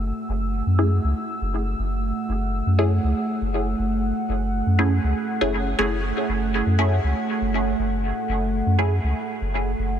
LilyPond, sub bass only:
\new Staff \with { instrumentName = "Sub bass" } { \clef bass \time 4/4 \key fis \minor \tempo 4 = 120 fis,,16 r16 fis,,8. fis,8. cis,16 r8 fis,,8. fis,,8~ | fis,,16 r16 fis,,8. fis,8. cis,16 r8 fis,,8. fis,,8~ | fis,,16 r16 fis,,8. fis,8. cis,16 r8 fis,,8. fis,,8~ | fis,,16 r16 fis,,8. fis,8. cis,16 r8 fis,,8. fis,,8~ |
fis,,16 r16 fis,,8. fis,8. cis,16 r8 fis,,8. fis,,8 | }